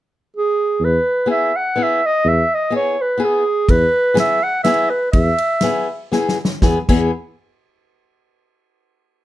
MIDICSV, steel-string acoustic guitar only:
0, 0, Header, 1, 2, 480
1, 0, Start_track
1, 0, Key_signature, 4, "major"
1, 0, Tempo, 480769
1, 798, Time_signature, 3, 2, 24, 8
1, 4643, Tempo, 491400
1, 9131, End_track
2, 0, Start_track
2, 0, Title_t, "Steel-string acoustic guitar"
2, 0, Program_c, 0, 25
2, 1258, Note_on_c, 0, 59, 52
2, 1267, Note_on_c, 0, 64, 42
2, 1272, Note_on_c, 0, 68, 53
2, 1506, Note_off_c, 0, 59, 0
2, 1508, Note_off_c, 0, 64, 0
2, 1512, Note_off_c, 0, 68, 0
2, 1753, Note_on_c, 0, 59, 51
2, 1760, Note_on_c, 0, 64, 50
2, 1771, Note_on_c, 0, 68, 57
2, 1994, Note_off_c, 0, 59, 0
2, 1997, Note_off_c, 0, 64, 0
2, 2003, Note_off_c, 0, 68, 0
2, 2699, Note_on_c, 0, 59, 49
2, 2705, Note_on_c, 0, 64, 44
2, 2716, Note_on_c, 0, 68, 58
2, 2941, Note_off_c, 0, 59, 0
2, 2941, Note_off_c, 0, 64, 0
2, 2948, Note_off_c, 0, 68, 0
2, 3170, Note_on_c, 0, 59, 53
2, 3179, Note_on_c, 0, 64, 44
2, 3192, Note_on_c, 0, 68, 65
2, 3418, Note_off_c, 0, 59, 0
2, 3418, Note_off_c, 0, 64, 0
2, 3427, Note_off_c, 0, 68, 0
2, 4135, Note_on_c, 0, 59, 56
2, 4145, Note_on_c, 0, 68, 66
2, 4153, Note_on_c, 0, 64, 49
2, 4381, Note_off_c, 0, 59, 0
2, 4387, Note_off_c, 0, 68, 0
2, 4388, Note_off_c, 0, 64, 0
2, 4635, Note_on_c, 0, 59, 66
2, 4639, Note_on_c, 0, 64, 46
2, 4651, Note_on_c, 0, 68, 65
2, 4869, Note_off_c, 0, 64, 0
2, 4870, Note_off_c, 0, 59, 0
2, 4877, Note_off_c, 0, 68, 0
2, 5597, Note_on_c, 0, 59, 56
2, 5605, Note_on_c, 0, 64, 44
2, 5607, Note_on_c, 0, 68, 63
2, 5832, Note_off_c, 0, 59, 0
2, 5834, Note_off_c, 0, 64, 0
2, 5836, Note_off_c, 0, 68, 0
2, 6075, Note_on_c, 0, 59, 54
2, 6082, Note_on_c, 0, 64, 53
2, 6087, Note_on_c, 0, 68, 65
2, 6319, Note_off_c, 0, 59, 0
2, 6322, Note_off_c, 0, 64, 0
2, 6325, Note_off_c, 0, 68, 0
2, 6574, Note_on_c, 0, 59, 58
2, 6577, Note_on_c, 0, 64, 49
2, 6581, Note_on_c, 0, 68, 65
2, 6718, Note_off_c, 0, 64, 0
2, 6719, Note_off_c, 0, 59, 0
2, 6722, Note_off_c, 0, 68, 0
2, 6830, Note_on_c, 0, 64, 58
2, 6834, Note_on_c, 0, 68, 69
2, 6838, Note_on_c, 0, 59, 73
2, 7035, Note_off_c, 0, 64, 0
2, 7037, Note_off_c, 0, 68, 0
2, 7039, Note_off_c, 0, 59, 0
2, 9131, End_track
0, 0, End_of_file